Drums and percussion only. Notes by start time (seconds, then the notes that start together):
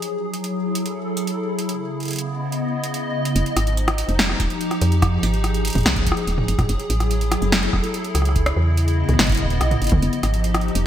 0.02 closed hi-hat
0.34 closed hi-hat
0.44 closed hi-hat
0.75 closed hi-hat
0.86 closed hi-hat
1.17 closed hi-hat
1.27 closed hi-hat
1.59 closed hi-hat
1.69 closed hi-hat
2.00 closed hi-hat
2.03 closed hi-hat
2.05 closed hi-hat
2.08 closed hi-hat
2.11 closed hi-hat
2.13 closed hi-hat
2.16 closed hi-hat
2.18 closed hi-hat
2.52 closed hi-hat
2.84 closed hi-hat
2.94 closed hi-hat
3.25 closed hi-hat
3.36 closed hi-hat
3.46 closed hi-hat
3.57 cross-stick, closed hi-hat
3.67 closed hi-hat
3.77 closed hi-hat
3.88 cross-stick, closed hi-hat
3.98 closed hi-hat
4.09 closed hi-hat
4.19 snare, closed hi-hat
4.29 cross-stick
4.40 kick, closed hi-hat
4.50 closed hi-hat
4.61 closed hi-hat
4.71 cross-stick, closed hi-hat
4.81 closed hi-hat
4.92 closed hi-hat
5.02 kick, cross-stick, closed hi-hat
5.23 closed hi-hat
5.34 closed hi-hat
5.44 cross-stick, closed hi-hat
5.54 closed hi-hat
5.65 closed hi-hat
5.67 closed hi-hat
5.70 closed hi-hat
5.73 closed hi-hat
5.75 closed hi-hat, mid tom
5.78 closed hi-hat
5.81 closed hi-hat
5.83 cross-stick, snare, closed hi-hat
5.96 kick, closed hi-hat
6.06 kick, closed hi-hat
6.12 cross-stick
6.17 closed hi-hat
6.27 closed hi-hat
6.38 mid tom
6.48 closed hi-hat
6.59 kick, cross-stick, closed hi-hat, mid tom
6.69 closed hi-hat
6.79 closed hi-hat
6.90 closed hi-hat
7.00 cross-stick, closed hi-hat
7.11 closed hi-hat
7.21 closed hi-hat
7.32 cross-stick, closed hi-hat
7.42 closed hi-hat
7.52 snare, closed hi-hat
7.63 closed hi-hat
7.73 kick, cross-stick
7.84 closed hi-hat
7.94 closed hi-hat
8.04 closed hi-hat
8.15 cross-stick, closed hi-hat
8.22 cross-stick, closed hi-hat
8.29 cross-stick
8.36 kick, closed hi-hat
8.46 cross-stick, closed hi-hat
8.77 closed hi-hat
8.88 closed hi-hat
9.09 closed hi-hat, mid tom
9.14 mid tom
9.19 snare, closed hi-hat, mid tom
9.22 closed hi-hat
9.24 closed hi-hat, mid tom
9.27 kick, closed hi-hat
9.29 closed hi-hat
9.32 closed hi-hat
9.35 closed hi-hat
9.37 kick, closed hi-hat
9.42 kick
9.45 kick
9.48 kick
9.50 kick, closed hi-hat
9.53 kick
9.55 kick
9.58 kick, cross-stick, closed hi-hat
9.71 closed hi-hat, mid tom
9.82 closed hi-hat
9.84 closed hi-hat
9.87 closed hi-hat
9.89 kick, closed hi-hat, mid tom
10.02 closed hi-hat
10.13 closed hi-hat
10.23 cross-stick, closed hi-hat
10.34 closed hi-hat
10.44 closed hi-hat
10.54 cross-stick, closed hi-hat
10.61 closed hi-hat
10.68 closed hi-hat
10.75 closed hi-hat